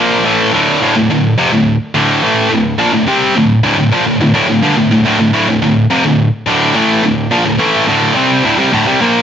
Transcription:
distorted electric guitar
Already playing: A#2 F3 A#3
0.25 A2 E3 A3
0.53 D2 A2 D3
0.82 D2 A2
0.96 D2 A2
1.10 D2 A2
1.38 F2 C3
1.53 D2 A2
1.95 D2 A2 D3
2.23 A2 E3 A3
2.50 D2 A2
2.79 A#2 F3
2.93 D2 A2
3.08 C3 G3 C4
3.36 D2 A2
3.63 D2 A2
3.78 D2 A2
3.92 A#2 F3
4.06 D2 A2
4.21 D2 A2
4.34 D2 A2
4.49 D2 A2
4.63 G2 D3
4.78 D2 A2
4.92 D2 A2
5.06 D2 A2
5.20 D2 A2
5.34 D2 A2
5.49 D2 A2
5.62 D2 A2
5.90 F2 C3
6.05 D2 A2
6.46 D2 A2 D3
6.75 A2 E3 A3
7.04 D2 A2
7.31 A#2 F3
7.45 D2 A2
7.59 A2 E3 A3
7.88 D2 A2 D3
8.16 C3 G3 C4
8.44 D2 A2
8.59 C3 G3
8.73 D2 A2
8.87 C3 G3
9.01 A#2 F3 A#3

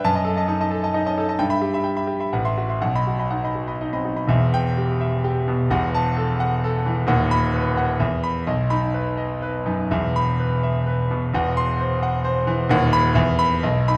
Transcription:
grand piano
0.04 F#2 A5
0.15 D#5 A5
0.25 A4
0.37 D#5 A5
0.48 D#4 A5
0.61 D#5 A5
0.71 A4
0.83 D#5 A5
0.94 D#4 D#5
1.06 C#4 D#5 A5
1.18 D#4 A4
1.28 D#5 A5
1.39 G2 G5
1.50 E5 B5
1.62 G4
1.74 E5 B5
1.84 G5
1.96 E5 B5
2.07 G4
2.20 E5 B5
2.33 A1 F#5
2.45 E5 C6
2.58 F#4
2.69 E5 C6
2.82 B1 F#5
2.95 D#5 B5
3.07 F#4
3.19 D#5 B5
3.30 D#4 F#5
3.44 D#5 B5
3.55 F#4
3.68 D#5 B5
3.81 D#4 D#5
3.93 C4 D#5 B5
4.04 D#4 F#4
4.16 D#5 B5
4.28 E1 E2 E5
4.54 G5
4.78 G4
5.01 E5
5.24 G4
5.48 B2
5.70 E1 E2 F#5
5.95 A5
6.17 A4
6.40 F#5
6.64 A4
6.86 E3
7.07 D#1 D#2 F#5
7.31 B5
7.53 B4
7.77 F#5
8.00 E2 E5
8.23 B5
8.47 B1 D#5
8.70 D#4 B5
8.94 B4
9.17 D#5
9.42 B4
9.66 F#2 D#4
9.91 E1 E2 E5
10.16 B5
10.40 B4
10.63 E5
10.86 B4
11.11 B2
11.34 E1 E2 F#5
11.57 C6
11.80 C5
12.03 F#5
12.24 C5
12.47 E3
12.69 D#1 D#2 F#5
12.93 B5
13.15 E2 E5
13.39 B5
13.63 B1 D#5
13.88 D#4 B5

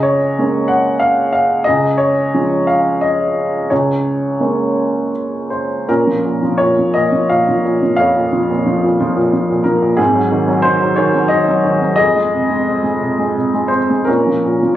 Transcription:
upright piano
Already playing: C#2 G#4 D#5
0.03 C#5
0.39 G#3 A#3 C#4
0.68 F#5
1.00 F5
1.33 F5
1.64 G#4 D#5
1.68 C#2
1.98 C#5
2.34 F3 G#3 C#4
2.67 F5
3.01 D#5
3.70 C#2 G#4 C#5
4.40 G#3 A#3 C#4
5.50 C5
5.89 A#2 C#4 A#4
6.07 F3
6.25 A#2
6.43 F3
6.58 A#2 C#5
6.79 F3
6.94 A#2 D#5
7.12 F3
7.29 A#2 F5
7.48 F3
7.65 A#2
7.82 F3
7.96 F2 C#5 F5
8.16 A#2
8.32 F3
8.50 A#2
8.66 F3
8.84 A#2
9.00 F3
9.17 A#2
9.33 F3
9.50 A#2
9.64 F3 A#4
9.82 A#2
9.97 G#2 C4 G#4
10.14 F#3
10.32 D#3
10.48 F#3
10.62 D#3 C5
10.81 F#3
10.96 D#3 C#5
11.15 F#3
11.28 D#3 D#5
11.48 F#3
11.65 D#3
11.82 F#3
11.96 F2 G#4 D#5
12.16 G#3
12.33 C3
12.50 G#3
12.67 C4
12.84 G#3
13.01 C3
13.19 G#3
13.37 C3
13.54 G#3
13.68 C4 C5
13.90 G#3
14.05 A#2 C#4 A#4
14.26 F3
14.45 A#2
14.63 F3

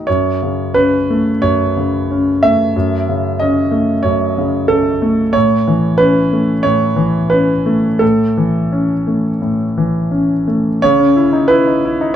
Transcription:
grand piano
0.07 F#2 C#5
0.42 C#3
0.74 C#4 B4
1.10 A3
1.42 F#2 C#5
1.77 C#3
2.11 C#4
2.43 A3 E5
2.76 F#2
3.08 C#3
3.40 C#4 D#5
3.71 A3
4.03 F#2 C#5
4.38 C#3
4.68 C#4 A4
5.02 A3
5.33 A2 C#5
5.68 E3
5.98 C#4 B4
6.33 A3
6.63 A2 C#5
6.96 E3
7.30 C#4 B4
7.66 A3
7.99 A2 A4
8.37 E3
8.72 C#4
9.07 A3
9.42 A2
9.78 E3
10.11 C#4
10.48 A3
10.82 C#3 C#5
11.00 C#4
11.16 E4
11.33 D#4
11.48 E4 B4
11.67 D#4
11.85 E4
12.01 D#4

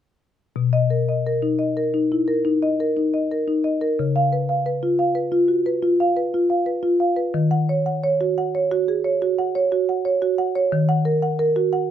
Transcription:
marimba
0.56 B2
0.73 D#5
0.90 A#4
1.09 D#5
1.26 A#4
1.42 D#4
1.59 D#5
1.77 A#4
1.94 D#4
2.12 E4
2.28 A#4
2.45 D#4
2.63 D#5
2.80 A#4
2.97 D#4
3.14 D#5
3.31 A#4
3.48 D#4
3.64 D#5
3.81 A#4
3.99 C#3
4.16 F5
4.33 B4
4.49 F5
4.66 B4
4.83 F4
4.99 F5
5.15 B4
5.32 F4
5.48 F#4
5.66 B4
5.82 F4
6.00 F5
6.17 B4
6.34 F4
6.50 F5
6.66 B4
6.83 F4
7.00 F5
7.16 B4
7.34 D#3
7.51 F#5
7.69 C#5
7.86 F#5
8.03 C#5
8.21 F#4
8.38 F#5
8.55 C#5
8.72 F#4
8.88 G#4
9.04 C#5
9.22 F#4
9.39 F#5
9.55 C#5
9.72 F#4
9.89 F#5
10.05 C#5
10.22 F#4
10.38 F#5
10.55 C#5
10.72 D#3
10.89 F#5
11.05 A#4
11.22 F#5
11.39 A#4
11.56 F#4
11.73 F#5

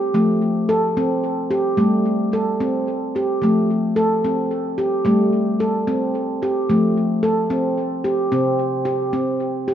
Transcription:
handpan
Already playing: G3 G4
0.14 F3 A3
0.69 A4
0.97 C4
1.51 G4
1.77 G3 A3
2.33 A4
2.60 C4
3.16 G4
3.42 F3 A3
3.96 A4
4.25 C4
4.78 G4
5.05 G3 A3
5.60 A4
5.87 C4
6.43 G4
6.70 F3 A3
7.23 A4
7.50 C4
8.04 G4
8.32 C3 C4
8.85 G4
9.13 C4
9.68 G4

